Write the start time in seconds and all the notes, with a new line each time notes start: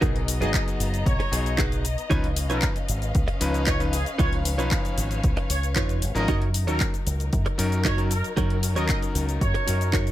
Already playing: B3 D#5
0.01 B1 F#3 B3 D#4 F#4 G#4 A#4 A#5, kick, closed hi-hat, shaker
0.16 closed hi-hat
0.28 open hi-hat, shaker
0.40 G#1 F#3 B3 D#4 F#4 G#4 B4 D#5, closed hi-hat, shaker
0.54 D#5, kick, clap, closed hi-hat, shaker
0.68 muted clean electric guitar stroke, closed hi-hat, shaker
0.80 F#1, open hi-hat, shaker
0.94 closed hi-hat, shaker
1.06 B1 C#5, kick, closed hi-hat, shaker
1.20 muted clean electric guitar stroke, closed hi-hat
1.31 B1 F#3 B3 D#4 G#4, muted clean electric guitar stroke, open hi-hat, shaker
1.46 closed hi-hat, shaker
1.58 D#4 F#4 G#4 B4, kick, clap, closed hi-hat, shaker
1.72 closed hi-hat, shaker
1.85 open hi-hat, shaker
1.98 closed hi-hat, shaker
2.09 C#2 F3 C#4 D#4 F4 B4 C#5 F5, kick, closed hi-hat, shaker
2.24 closed hi-hat
2.36 open hi-hat, shaker
2.49 B1 F3 C#4 D#4 F4 A#4 B4 C#5, closed hi-hat, shaker
2.62 kick, clap, closed hi-hat, shaker
2.76 muted clean electric guitar stroke, closed hi-hat, shaker
2.88 G#1, open hi-hat, shaker
3.02 closed hi-hat, shaker
3.15 C#2, kick, closed hi-hat, shaker
3.28 muted clean electric guitar stroke, closed hi-hat
3.40 C#2 F3 C#4 D#4 B4, muted clean electric guitar stroke, open hi-hat, shaker
3.54 closed hi-hat, shaker
3.67 D#4 F4 B4 C#5 D#5, kick, clap, closed hi-hat, shaker
3.80 F3 C#4 D#4 B4, closed hi-hat, shaker
3.93 G#4, open hi-hat, shaker
4.06 closed hi-hat, shaker
4.18 C#2 F3 C#4 D#4 F4 B4 C#5, kick, closed hi-hat, shaker
4.33 closed hi-hat
4.45 open hi-hat, shaker
4.58 B1 F3 C#4 D#4 F4 B4 C#5, closed hi-hat, shaker
4.71 kick, clap, closed hi-hat, shaker
4.85 muted clean electric guitar stroke, closed hi-hat, shaker
4.98 G#1, open hi-hat, shaker
5.11 closed hi-hat, shaker
5.24 C#2, kick, closed hi-hat, shaker
5.37 muted clean electric guitar stroke, closed hi-hat
5.50 C#2 C#5, muted clean electric guitar stroke, open hi-hat, shaker
5.63 closed hi-hat, shaker
5.76 F2 D#4 F4 B4 C#5, kick, clap, closed hi-hat, shaker
5.89 closed hi-hat, shaker
6.02 G#1, open hi-hat, shaker
6.15 G#1 F3 C#4 D#4 A#4 D#5, closed hi-hat, shaker
6.28 F#2 F#3 C#4 D#4 F#4 A#4 C#5, kick, closed hi-hat, shaker
6.42 closed hi-hat
6.54 open hi-hat, shaker
6.67 D#2 F#3 C#4 D#4 F#4 A#4 C#5, closed hi-hat, shaker
6.80 kick, clap, closed hi-hat, shaker
6.93 muted clean electric guitar stroke, closed hi-hat, shaker
7.07 C#2, open hi-hat, shaker
7.20 closed hi-hat, shaker
7.33 F#2, kick, closed hi-hat, shaker
7.46 muted clean electric guitar stroke, closed hi-hat
7.58 F#2 F#3 C#4 D#4 A#4, muted clean electric guitar stroke, open hi-hat, shaker
7.72 closed hi-hat, shaker
7.85 D#4 F#4 A#4 C#5 D#5, kick, clap, closed hi-hat, shaker
7.97 F#3 C#4 D#4 A#4, closed hi-hat, shaker
8.11 A#4, open hi-hat, shaker
8.24 closed hi-hat, shaker
8.36 F#2 F#3 C#4 D#4 F#4 A#4 C#5, kick, closed hi-hat, shaker
8.50 closed hi-hat
8.63 open hi-hat, shaker
8.75 D#2 F#3 C#4 D#4 F#4 A#4 C#5 D#5, closed hi-hat, shaker
8.89 D#5, kick, clap, closed hi-hat, shaker
9.02 muted clean electric guitar stroke, closed hi-hat, shaker
9.15 C#2, open hi-hat, shaker
9.29 closed hi-hat, shaker
9.41 F#2 C#5, kick, closed hi-hat, shaker
9.54 muted clean electric guitar stroke, closed hi-hat
9.67 F#2 F#3 C#4 D#4 A#4, muted clean electric guitar stroke, open hi-hat, shaker
9.81 closed hi-hat, shaker
9.93 D#4 F#4 A#4 C#5, kick, clap, closed hi-hat, shaker
10.07 closed hi-hat, shaker